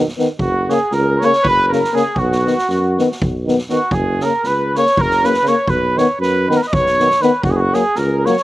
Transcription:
0.08 snare
0.18 D#3 B3, snare
0.38 F#1 F#4, kick
0.43 F#4
0.69 C#3 A#3 G#4, snare
0.74 G#4
0.91 C#2 A#4, snare
1.20 A#3 C#5, snare
1.25 C#3 C#5
1.33 snare
1.43 F#1 B4, kick
1.49 B4
1.69 C#3 A#3 A#4, snare
1.74 A#4
1.84 snare
1.93 C#3 A#3 G#4, snare
1.97 G#4
2.16 B1 F#4, kick
2.32 snare
2.45 D#3 B3, snare
2.58 snare
2.69 F#2, snare
2.98 D#3 B3, snare
3.12 snare
3.21 B1, kick
3.45 D#3 B3, snare
3.58 snare
3.69 D#3 B3 F#4, snare
3.75 F#4
3.91 F#1 G#4, kick
4.20 C#3 A#3 A#4, snare
4.26 A#4
4.44 C#2 B4, snare
4.48 B4
4.75 C#3 A#3 C#5, snare
4.86 snare
4.97 F#1 A#4, kick
5.01 A#4
5.11 snare
5.23 C#3 A#3 B4, snare
5.34 snare
5.43 C#3 A#3, snare
5.47 C#5
5.67 B1 B4, kick
5.96 D#3 B3 C#5, snare
6.19 F#2 B4, snare
6.48 D#3 B3 B4, snare
6.56 A#4
6.62 B4, snare
6.67 D#5
6.73 B1 C#5, kick
6.86 snare
6.99 D#3 B3, snare
7.11 snare
7.21 D#3 B3 B4, snare
7.43 F#1 F#4, kick
7.51 G#4
7.56 F#4
7.61 F#4
7.73 F#3 A#3 G#4, snare
7.95 C#2 A#4, snare
8.25 F#3 A#3 C#5, snare
8.37 snare

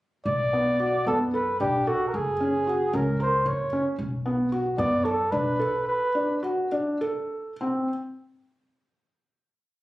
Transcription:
0.26 B1 D5
0.53 B3
0.80 F#4
1.06 F#2 B3 A4
1.34 A4 B4
1.60 B1 D4 G4
1.87 F#4 A4
2.08 A#4
2.14 F#1 G#4
2.40 C#4
2.67 F#4
2.93 C#2 C#4 A#4
3.20 A#4 C5
3.46 F#1 C#5
3.73 C#4
3.98 B1
4.26 B3
4.52 F#4
4.78 F#2 B3 D5
5.05 A4
5.31 B1 D4 B4
5.59 A4
5.87 B4
6.15 D4
6.43 F#4
6.72 D4
7.01 A4
7.61 C4

